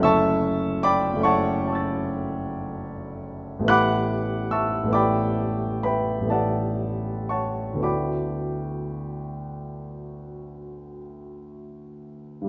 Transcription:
<<
  \new Staff \with { instrumentName = "Grand piano" } { \time 9/8 \key d \major \tempo 4. = 44 << { r2 <a'' cis''' e''' a'''>2~ <a'' cis''' e''' a'''>8 | r1 r8 | r1 r8 | } \\ { <e'' a'' cis''' e'''>4 <d'' g'' b'' d'''>8 <cis'' fis'' a'' cis'''>2~ <cis'' fis'' a'' cis'''>8 r8 | <fis'' b'' d''' fis'''>4 <e'' a'' cis''' e'''>8 <d'' g'' b'' d'''>4 <b' e'' g'' b''>8 <a' d'' fis'' a''>4 <cis'' fis'' a'' cis'''>8 | <d'' g'' b'' d'''>2. r4. | } >> }
  \new Staff \with { instrumentName = "Grand piano" } { \time 9/8 \key d \major <fis,, a cis' e' a'>4. <fis,, a cis' e' a'>2. | <a,, a b e' g'>4. <a,, a b e' g'>4. <a,, a b e' g'>4. | <d, a b e' fis'>1~ <d, a b e' fis'>8 | }
>>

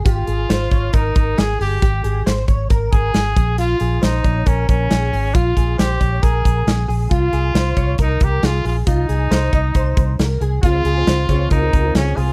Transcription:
<<
  \new Staff \with { instrumentName = "Clean electric guitar" } { \time 4/4 \key aes \major \tempo 4 = 136 g'8 aes'8 c''8 des''8 bes'4 aes'8 aes'8 | g'8 aes'8 c''8 des''8 bes'4 aes'8 aes'8 | f'8 aes'8 c''8 des''8 bes'4 aes'8 aes'8 | f'8 aes'8 c''8 des''8 bes'4 aes'8 aes'8 |
f'8 aes'8 c''8 des''8 bes'4 aes'8 aes'8 | f'8 aes'8 c''8 ees''8 c''4 bes'8 aes'8 | f'8 aes'8 c''8 des''8 bes'4 aes'8 aes'8 | }
  \new Staff \with { instrumentName = "Trumpet" } { \time 4/4 \key aes \major f'2 ees'4 aes'8 g'8~ | g'4 r4. aes'4. | f'4 ees'4 des'8 des'4. | f'4 g'4 aes'4. r8 |
f'2 ees'8 g'8 f'8 f'8 | ees'2. r4 | f'2 ees'4 des'8 f'8 | }
  \new Staff \with { instrumentName = "Twelve-string acoustic guitar" } { \time 4/4 \key aes \major r1 | r1 | r1 | r1 |
r1 | r1 | <des aes c' f'>8. <aes c' f'>8. <des aes c' f'>8. <aes c' f'>8 <aes c' f'>4~ <aes c' f'>16 | }
  \new Staff \with { instrumentName = "Fingered electric bass" } { \clef bass \time 4/4 \key aes \major aes,,8 aes,,8 aes,,8 aes,,8 aes,,8 aes,,8 aes,,8 g,,8 | aes,,8 aes,,8 aes,,8 aes,,8 aes,,8 aes,,8 aes,,8 bes,,8~ | bes,,8 bes,,8 bes,,8 bes,,8 bes,,8 bes,,8 bes,,8 aes,,8 | bes,,8 bes,,8 bes,,8 bes,,8 bes,,8 bes,,8 bes,,8 bes,,8 |
c,8 c,8 c,8 c,8 c,8 c,8 c,8 bes,,8 | c,8 c,8 c,8 c,8 c,8 c,8 c,8 c,8 | des,8 des,8 des,8 des,8 des,8 des,8 des,8 c,8 | }
  \new DrumStaff \with { instrumentName = "Drums" } \drummode { \time 4/4 <hh bd>8 hh8 <hh sn>8 <hh bd>8 <hh bd>8 <hh bd>8 <hh sn>8 hho8 | <hh bd>8 hh8 <hh sn>8 <hh bd>8 <hh bd>8 <hh bd>8 <hh sn>8 <hh bd>8 | hh8 hh8 <hh sn>8 <hh bd>8 <hh bd>8 <hh bd>8 <hh sn>8 hho8 | <hh bd>8 <hh bd>8 <hh sn>8 <hh bd>8 <hh bd>8 <hh bd>8 <hh sn>8 hho8 |
<hh bd>8 hh8 <hh sn>8 <hh bd>8 <hh bd>8 <hh bd>8 <hh sn>8 hho8 | <hh bd>8 hh8 <hh sn>8 <hh bd>8 <hh bd>8 <hh bd>8 <hh sn>8 hh8 | <hh bd>8 hh8 <hh sn>8 <hh bd>8 <hh bd>8 <hh bd>8 <hh sn>8 hho8 | }
>>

